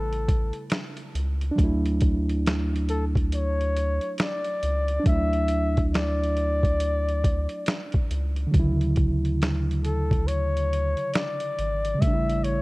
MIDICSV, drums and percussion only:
0, 0, Header, 1, 2, 480
1, 0, Start_track
1, 0, Key_signature, 2, "major"
1, 0, Tempo, 869565
1, 872, Time_signature, 4, 2, 24, 8
1, 6966, End_track
2, 0, Start_track
2, 0, Title_t, "Drums"
2, 69, Note_on_c, 9, 42, 45
2, 124, Note_off_c, 9, 42, 0
2, 157, Note_on_c, 9, 36, 80
2, 158, Note_on_c, 9, 42, 69
2, 212, Note_off_c, 9, 36, 0
2, 213, Note_off_c, 9, 42, 0
2, 293, Note_on_c, 9, 42, 37
2, 348, Note_off_c, 9, 42, 0
2, 386, Note_on_c, 9, 42, 83
2, 396, Note_on_c, 9, 38, 104
2, 441, Note_off_c, 9, 42, 0
2, 451, Note_off_c, 9, 38, 0
2, 534, Note_on_c, 9, 42, 48
2, 589, Note_off_c, 9, 42, 0
2, 636, Note_on_c, 9, 42, 69
2, 692, Note_off_c, 9, 42, 0
2, 780, Note_on_c, 9, 42, 53
2, 835, Note_off_c, 9, 42, 0
2, 874, Note_on_c, 9, 36, 93
2, 876, Note_on_c, 9, 42, 86
2, 929, Note_off_c, 9, 36, 0
2, 931, Note_off_c, 9, 42, 0
2, 1024, Note_on_c, 9, 42, 42
2, 1079, Note_off_c, 9, 42, 0
2, 1107, Note_on_c, 9, 42, 63
2, 1114, Note_on_c, 9, 36, 92
2, 1163, Note_off_c, 9, 42, 0
2, 1169, Note_off_c, 9, 36, 0
2, 1266, Note_on_c, 9, 42, 36
2, 1322, Note_off_c, 9, 42, 0
2, 1361, Note_on_c, 9, 42, 63
2, 1366, Note_on_c, 9, 38, 105
2, 1416, Note_off_c, 9, 42, 0
2, 1421, Note_off_c, 9, 38, 0
2, 1522, Note_on_c, 9, 42, 41
2, 1577, Note_off_c, 9, 42, 0
2, 1594, Note_on_c, 9, 42, 59
2, 1649, Note_off_c, 9, 42, 0
2, 1741, Note_on_c, 9, 36, 90
2, 1750, Note_on_c, 9, 42, 47
2, 1796, Note_off_c, 9, 36, 0
2, 1805, Note_off_c, 9, 42, 0
2, 1834, Note_on_c, 9, 42, 75
2, 1889, Note_off_c, 9, 42, 0
2, 1991, Note_on_c, 9, 42, 43
2, 2047, Note_off_c, 9, 42, 0
2, 2079, Note_on_c, 9, 42, 66
2, 2134, Note_off_c, 9, 42, 0
2, 2215, Note_on_c, 9, 42, 36
2, 2270, Note_off_c, 9, 42, 0
2, 2307, Note_on_c, 9, 42, 80
2, 2317, Note_on_c, 9, 38, 115
2, 2363, Note_off_c, 9, 42, 0
2, 2373, Note_off_c, 9, 38, 0
2, 2454, Note_on_c, 9, 42, 46
2, 2509, Note_off_c, 9, 42, 0
2, 2555, Note_on_c, 9, 42, 65
2, 2610, Note_off_c, 9, 42, 0
2, 2695, Note_on_c, 9, 42, 54
2, 2751, Note_off_c, 9, 42, 0
2, 2792, Note_on_c, 9, 36, 109
2, 2793, Note_on_c, 9, 42, 78
2, 2848, Note_off_c, 9, 36, 0
2, 2848, Note_off_c, 9, 42, 0
2, 2943, Note_on_c, 9, 42, 45
2, 2998, Note_off_c, 9, 42, 0
2, 3026, Note_on_c, 9, 42, 73
2, 3082, Note_off_c, 9, 42, 0
2, 3186, Note_on_c, 9, 42, 38
2, 3188, Note_on_c, 9, 36, 90
2, 3241, Note_off_c, 9, 42, 0
2, 3244, Note_off_c, 9, 36, 0
2, 3281, Note_on_c, 9, 42, 67
2, 3286, Note_on_c, 9, 38, 96
2, 3336, Note_off_c, 9, 42, 0
2, 3341, Note_off_c, 9, 38, 0
2, 3442, Note_on_c, 9, 42, 42
2, 3497, Note_off_c, 9, 42, 0
2, 3515, Note_on_c, 9, 42, 57
2, 3570, Note_off_c, 9, 42, 0
2, 3661, Note_on_c, 9, 36, 84
2, 3670, Note_on_c, 9, 42, 48
2, 3717, Note_off_c, 9, 36, 0
2, 3725, Note_off_c, 9, 42, 0
2, 3754, Note_on_c, 9, 42, 80
2, 3810, Note_off_c, 9, 42, 0
2, 3911, Note_on_c, 9, 42, 47
2, 3967, Note_off_c, 9, 42, 0
2, 3997, Note_on_c, 9, 36, 82
2, 3999, Note_on_c, 9, 42, 68
2, 4053, Note_off_c, 9, 36, 0
2, 4054, Note_off_c, 9, 42, 0
2, 4135, Note_on_c, 9, 42, 38
2, 4190, Note_off_c, 9, 42, 0
2, 4229, Note_on_c, 9, 42, 82
2, 4240, Note_on_c, 9, 38, 113
2, 4285, Note_off_c, 9, 42, 0
2, 4295, Note_off_c, 9, 38, 0
2, 4373, Note_on_c, 9, 42, 49
2, 4383, Note_on_c, 9, 36, 93
2, 4428, Note_off_c, 9, 42, 0
2, 4439, Note_off_c, 9, 36, 0
2, 4476, Note_on_c, 9, 42, 70
2, 4531, Note_off_c, 9, 42, 0
2, 4616, Note_on_c, 9, 42, 49
2, 4672, Note_off_c, 9, 42, 0
2, 4713, Note_on_c, 9, 36, 101
2, 4715, Note_on_c, 9, 42, 79
2, 4768, Note_off_c, 9, 36, 0
2, 4770, Note_off_c, 9, 42, 0
2, 4863, Note_on_c, 9, 42, 40
2, 4918, Note_off_c, 9, 42, 0
2, 4946, Note_on_c, 9, 42, 68
2, 4953, Note_on_c, 9, 36, 86
2, 5001, Note_off_c, 9, 42, 0
2, 5008, Note_off_c, 9, 36, 0
2, 5106, Note_on_c, 9, 42, 36
2, 5161, Note_off_c, 9, 42, 0
2, 5199, Note_on_c, 9, 42, 67
2, 5203, Note_on_c, 9, 38, 100
2, 5254, Note_off_c, 9, 42, 0
2, 5259, Note_off_c, 9, 38, 0
2, 5360, Note_on_c, 9, 42, 39
2, 5415, Note_off_c, 9, 42, 0
2, 5435, Note_on_c, 9, 42, 60
2, 5490, Note_off_c, 9, 42, 0
2, 5581, Note_on_c, 9, 36, 91
2, 5590, Note_on_c, 9, 42, 48
2, 5636, Note_off_c, 9, 36, 0
2, 5645, Note_off_c, 9, 42, 0
2, 5675, Note_on_c, 9, 42, 80
2, 5731, Note_off_c, 9, 42, 0
2, 5833, Note_on_c, 9, 42, 45
2, 5889, Note_off_c, 9, 42, 0
2, 5923, Note_on_c, 9, 42, 68
2, 5978, Note_off_c, 9, 42, 0
2, 6055, Note_on_c, 9, 42, 37
2, 6111, Note_off_c, 9, 42, 0
2, 6147, Note_on_c, 9, 42, 78
2, 6157, Note_on_c, 9, 38, 117
2, 6202, Note_off_c, 9, 42, 0
2, 6212, Note_off_c, 9, 38, 0
2, 6293, Note_on_c, 9, 42, 49
2, 6348, Note_off_c, 9, 42, 0
2, 6395, Note_on_c, 9, 42, 73
2, 6450, Note_off_c, 9, 42, 0
2, 6540, Note_on_c, 9, 42, 53
2, 6595, Note_off_c, 9, 42, 0
2, 6634, Note_on_c, 9, 36, 97
2, 6635, Note_on_c, 9, 42, 87
2, 6689, Note_off_c, 9, 36, 0
2, 6691, Note_off_c, 9, 42, 0
2, 6787, Note_on_c, 9, 42, 43
2, 6842, Note_off_c, 9, 42, 0
2, 6869, Note_on_c, 9, 42, 75
2, 6924, Note_off_c, 9, 42, 0
2, 6966, End_track
0, 0, End_of_file